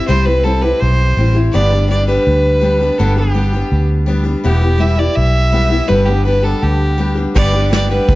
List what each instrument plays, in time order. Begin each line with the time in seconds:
0.07 fingered electric bass C2, steel-string acoustic guitar C3 G3 C4 E4 G4, fiddle C5
0.25 steel-string acoustic guitar C4 E4 G4, fiddle B4
0.44 steel-string acoustic guitar G3 C4 E4 G4, fiddle A4
0.61 steel-string acoustic guitar E4 G4, fiddle B4
0.66 steel-string acoustic guitar C4
0.80 fingered electric bass B1, fiddle C5
1.17 fingered electric bass A1, steel-string acoustic guitar G3 C4 E4 G4
1.34 steel-string acoustic guitar C4 E4 G4
1.52 fingered electric bass G1, steel-string acoustic guitar G2 D3 G3 B3 D4 G4, fiddle D5
1.71 steel-string acoustic guitar G3 B3 D4 G4
1.88 steel-string acoustic guitar G3 B3 D4 G4, fiddle D5
2.07 steel-string acoustic guitar G3 B3 D4 G4, fiddle B4
2.27 fingered electric bass D2
2.61 steel-string acoustic guitar G3 B3 D4 G4
2.80 steel-string acoustic guitar G3 B3 D4 G4
2.98 fingered electric bass G1, steel-string acoustic guitar G2 D3 G3 B3 D4 G4, fiddle A4
3.16 steel-string acoustic guitar G3 B3 D4 G4, fiddle G4
3.34 steel-string acoustic guitar G3 B3 D4 G4
3.53 steel-string acoustic guitar G3 B3 D4 G4
3.72 fingered electric bass D2
4.06 steel-string acoustic guitar G3 B3 D4 G4
4.23 steel-string acoustic guitar G3 B3 D4 G4
4.44 fingered electric bass E1, steel-string acoustic guitar E3 G3 B3 E4 G4, fiddle G4
4.61 steel-string acoustic guitar B3 E4 G4
4.78 steel-string acoustic guitar G3 B3 E4 G4, fiddle E5
4.97 steel-string acoustic guitar B3 E4 G4, fiddle D5
5.15 fingered electric bass B1, fiddle E5
5.52 steel-string acoustic guitar G3 B3 E4 G4
5.70 steel-string acoustic guitar B3 E4 G4
5.88 fingered electric bass G1, steel-string acoustic guitar G2 D3 G3 B3 D4 G4, fiddle B4
6.06 steel-string acoustic guitar G3 B3 D4 G4, fiddle G4
6.25 steel-string acoustic guitar G3 B3 D4 G4, fiddle B4
6.43 steel-string acoustic guitar G3 B3 D4 G4, fiddle A4
6.62 fingered electric bass D2, fiddle G4
6.98 steel-string acoustic guitar G3 B3 D4 G4
7.15 steel-string acoustic guitar G3 B3 D4 G4
7.35 fingered electric bass G1, steel-string acoustic guitar G2 D3 G3 B3 D4 G4, pedal steel guitar G4 B4 D5, fiddle D5, kick, crash
7.53 steel-string acoustic guitar G3 B3 D4 G4
7.69 steel-string acoustic guitar G3 B3 D4 G4, fiddle D5, snare, closed hi-hat
7.90 steel-string acoustic guitar G3 B3 D4 G4, fiddle B4
8.09 fingered electric bass D2, kick, closed hi-hat